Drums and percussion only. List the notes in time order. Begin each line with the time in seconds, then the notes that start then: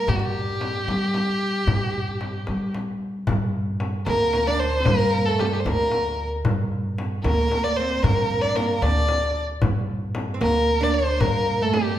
0.08 frame drum
0.61 frame drum
0.88 frame drum
1.14 frame drum
1.68 frame drum
2.21 frame drum
2.47 frame drum
2.74 frame drum
3.27 frame drum
3.80 frame drum
4.07 frame drum
4.33 frame drum
4.85 frame drum
5.39 frame drum
5.66 frame drum
5.92 frame drum
6.45 frame drum
6.98 frame drum
7.24 frame drum
7.51 frame drum
8.04 frame drum
8.56 frame drum
8.82 frame drum
9.09 frame drum
9.62 frame drum
10.15 frame drum
10.41 frame drum
11.21 frame drum
11.74 frame drum